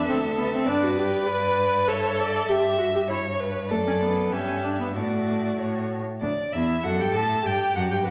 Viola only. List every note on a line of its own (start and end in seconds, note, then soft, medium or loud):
0.08 0.16 C4 medium
0.37 0.52 B3 medium
0.53 0.69 C4 medium
0.68 0.85 D4 medium
0.84 0.99 F#4 medium
0.97 1.28 G4 medium
1.27 1.89 B4 medium
1.88 2.50 A4 medium
2.49 2.78 G4 medium
2.78 2.85 F#4 medium
2.95 3.01 G4 medium
3.09 3.17 E4 medium
3.71 3.77 A3 medium
3.87 3.93 C#4 medium
4.02 4.34 B3 medium
4.32 4.65 C#4 medium
4.63 4.79 D4 medium
4.80 4.86 B3 medium
4.95 5.88 A3 medium
6.22 6.30 D4 medium
6.53 6.85 E4 medium
6.84 7.00 F#4 medium
6.98 7.15 G4 medium
7.13 7.45 A4 medium
7.43 7.74 G4 medium
7.75 7.91 F#4 medium
7.90 8.06 G4 medium
8.04 8.10 F#4 medium